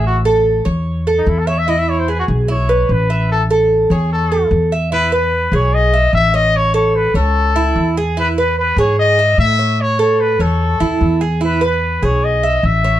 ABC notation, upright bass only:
X:1
M:4/4
L:1/8
Q:1/4=148
K:E
V:1 name="Upright bass" clef=bass
A,,,3 E,,3 E,,2- | E,,3 B,,,3 A,,,2- | A,,,3 E,,3 E,,2- | E,,3 B,,,3 A,,,2- |
A,,,3 C,,3 E,,2- | E,,3 G,,3 A,,2- | A,,3 E,,2 D,, E,,2- | E,,3 B,,,3 A,,,2 |]